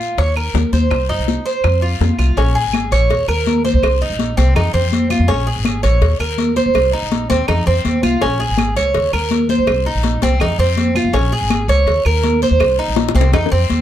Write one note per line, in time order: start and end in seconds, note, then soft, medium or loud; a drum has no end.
0.00 0.17 F4 medium
0.00 high conga soft
0.00 short guiro medium
0.18 0.53 D#2 loud
0.18 0.36 C#5 medium
0.18 high bongo medium
0.18 high conga soft
0.18 long guiro medium
0.36 0.72 A#4 medium
0.36 high conga soft
0.36 claves medium
0.54 0.63 D#2 medium
0.54 high bongo medium
0.54 low bongo medium
0.54 high conga medium
0.54 short guiro medium
0.72 0.90 D#2 loud
0.72 1.09 C5 medium
0.72 high conga medium
0.72 short guiro medium
0.90 1.08 C2 loud
0.90 high bongo medium
0.90 long guiro medium
0.90 claves medium
1.09 1.18 F#2 medium
1.09 1.45 D#4 medium
1.09 high bongo soft
1.09 high conga soft
1.19 1.36 C2 medium
1.28 high bongo medium
1.28 high conga medium
1.28 short guiro medium
1.46 1.81 C5 medium
1.46 high conga soft
1.46 short guiro medium
1.64 1.99 F2 medium
1.64 high bongo medium
1.64 high conga soft
1.64 long guiro medium
1.64 claves medium
1.82 2.18 F4 medium
1.82 high bongo soft
1.82 high conga soft
2.00 2.09 F2 loud
2.00 high bongo medium
2.00 low bongo medium
2.00 high conga medium
2.00 short guiro medium
2.18 2.36 C2 loud
2.18 2.37 F4 medium
2.18 high bongo soft
2.18 short guiro medium
2.18 claves medium
2.37 2.54 A#1 loud
2.37 2.55 C#4 medium
2.37 cowbell loud
2.37 high conga soft
2.37 long guiro medium
2.55 2.91 G#4 medium
2.55 high conga soft
2.64 2.91 G#1 medium
2.73 cowbell medium
2.73 high conga medium
2.73 short guiro medium
2.73 claves medium
2.91 3.09 A#1 loud
2.91 3.27 C#5 medium
2.91 cowbell medium
2.91 short guiro medium
3.10 3.27 D#2 medium
3.10 cowbell loud
3.10 high conga soft
3.10 long guiro medium
3.28 3.72 D#2 medium
3.28 3.64 A#4 medium
3.28 high conga soft
3.28 claves medium
3.46 cowbell medium
3.46 high conga medium
3.46 short guiro medium
3.65 4.00 C5 medium
3.65 high conga medium
3.65 short guiro medium
3.74 3.82 C#2 medium
3.83 4.00 C2 loud
3.83 cowbell loud
3.83 long guiro medium
3.83 claves medium
4.01 4.37 D#4 medium
4.01 high conga soft
4.10 4.36 A#1 medium
4.19 cowbell medium
4.19 high conga loud
4.19 short guiro medium
4.37 4.55 C2 loud
4.37 4.55 C4 medium
4.37 cowbell medium
4.37 high conga loud
4.37 short guiro medium
4.55 4.73 F2 loud
4.55 4.73 D#4 medium
4.55 cowbell loud
4.55 high conga soft
4.55 low conga medium
4.55 long guiro medium
4.55 claves medium
4.74 5.17 F2 medium
4.74 5.09 C4 medium
4.74 high conga soft
4.74 low conga medium
4.92 cowbell medium
4.92 high conga medium
4.92 short guiro medium
5.10 5.28 F4 medium
5.10 high conga medium
5.10 short guiro medium
5.10 claves medium
5.20 5.28 F2 medium
5.28 5.46 A#1 loud
5.28 5.46 C#4 medium
5.28 cowbell loud
5.28 long guiro medium
5.47 5.82 G#4 medium
5.47 high conga soft
5.56 5.82 G#1 medium
5.65 cowbell medium
5.65 high conga loud
5.65 short guiro medium
5.65 claves medium
5.83 6.01 A#1 loud
5.83 6.19 C#5 medium
5.83 cowbell medium
5.83 short guiro medium
6.01 6.19 D#2 loud
6.01 cowbell loud
6.01 high conga soft
6.01 long guiro medium
6.20 6.63 D#2 medium
6.20 6.56 A#4 medium
6.20 high conga soft
6.20 claves medium
6.38 cowbell medium
6.38 high conga medium
6.38 short guiro medium
6.56 6.92 C5 medium
6.56 high conga medium
6.56 short guiro medium
6.66 6.74 D#2 medium
6.74 6.92 C2 loud
6.74 cowbell loud
6.74 high conga soft
6.74 long guiro medium
6.74 claves medium
6.93 7.29 D#4 medium
6.93 high conga soft
7.03 7.29 A#1 medium
7.11 cowbell medium
7.11 high conga loud
7.11 short guiro medium
7.30 7.48 D#2 loud
7.30 7.48 C4 medium
7.30 cowbell medium
7.30 high conga medium
7.30 short guiro medium
7.48 7.66 F2 loud
7.48 7.66 D#4 medium
7.48 cowbell loud
7.48 high conga soft
7.48 low conga medium
7.48 long guiro medium
7.48 claves medium
7.66 7.84 F2 medium
7.66 8.02 C4 medium
7.66 high conga soft
7.66 low conga medium
7.85 8.01 D#2 medium
7.85 cowbell medium
7.85 high conga medium
7.85 short guiro medium
8.03 8.20 C2 medium
8.03 8.21 F4 medium
8.03 high conga medium
8.03 short guiro medium
8.03 claves medium
8.21 8.39 A#1 loud
8.21 8.39 C#4 medium
8.21 cowbell loud
8.21 high conga soft
8.21 long guiro medium
8.40 8.75 G#4 medium
8.40 high conga soft
8.49 8.75 G#1 medium
8.58 cowbell medium
8.58 high conga loud
8.58 short guiro medium
8.58 claves medium
8.76 8.94 C#2 medium
8.76 9.12 C#5 medium
8.76 cowbell medium
8.76 short guiro medium
8.94 9.12 D#2 loud
8.94 cowbell loud
8.94 high conga soft
8.94 long guiro medium
9.13 9.57 D#2 medium
9.13 9.49 A#4 medium
9.13 high conga soft
9.13 claves medium
9.31 cowbell medium
9.31 high conga medium
9.31 short guiro medium
9.49 9.85 C5 medium
9.49 high conga medium
9.49 short guiro medium
9.58 9.67 C#2 medium
9.67 9.85 C2 loud
9.67 cowbell loud
9.67 high conga soft
9.67 long guiro medium
9.67 claves medium
9.86 10.22 D#4 medium
9.86 high conga soft
9.95 10.21 A#1 medium
10.03 cowbell medium
10.03 high conga loud
10.03 short guiro medium
10.22 10.40 C2 loud
10.22 10.41 C4 medium
10.22 cowbell medium
10.22 high conga medium
10.22 short guiro medium
10.40 10.58 F2 loud
10.40 10.59 D#4 medium
10.40 cowbell loud
10.40 high conga soft
10.40 low conga medium
10.40 long guiro medium
10.40 claves medium
10.59 11.02 F2 medium
10.59 10.95 C4 medium
10.59 high conga soft
10.77 cowbell medium
10.77 high conga medium
10.77 short guiro medium
10.95 11.14 F4 medium
10.95 high conga medium
10.95 short guiro medium
10.95 claves medium
11.04 11.13 F2 medium
11.13 11.31 A#1 loud
11.13 11.32 C#4 medium
11.13 cowbell loud
11.13 long guiro medium
11.32 11.68 G#4 medium
11.32 high conga soft
11.41 11.67 G#1 medium
11.50 cowbell medium
11.50 high conga medium
11.50 short guiro medium
11.50 claves medium
11.68 11.86 C#2 loud
11.68 12.05 C#5 medium
11.68 cowbell medium
11.68 short guiro medium
11.86 12.04 D#2 loud
11.86 cowbell loud
11.86 high conga soft
11.86 long guiro medium
12.05 12.49 D#2 medium
12.05 12.41 A#4 medium
12.05 high conga soft
12.05 claves medium
12.24 cowbell medium
12.24 high conga medium
12.24 short guiro medium
12.42 12.78 C5 medium
12.42 high conga medium
12.42 short guiro medium
12.51 12.59 D#2 medium
12.60 12.77 C2 loud
12.60 cowbell loud
12.60 high conga soft
12.60 long guiro medium
12.60 claves medium
12.79 13.14 D#4 medium
12.79 high conga soft
12.88 13.14 A#1 medium
12.96 cowbell medium
12.96 high bongo loud
12.96 high conga medium
12.96 short guiro medium
13.09 high bongo loud
13.15 13.32 C2 loud
13.15 13.33 C4 medium
13.15 cowbell medium
13.15 high conga loud
13.15 short guiro medium
13.21 low bongo loud
13.33 13.51 F2 loud
13.33 13.51 D#4 medium
13.33 cowbell loud
13.33 low bongo medium
13.33 high conga soft
13.33 low conga medium
13.33 long guiro medium
13.33 claves medium
13.46 low bongo medium
13.51 13.69 F2 medium
13.51 13.81 C4 medium
13.51 high conga soft
13.70 13.81 D#2 medium
13.70 cowbell medium
13.70 high conga medium
13.70 short guiro medium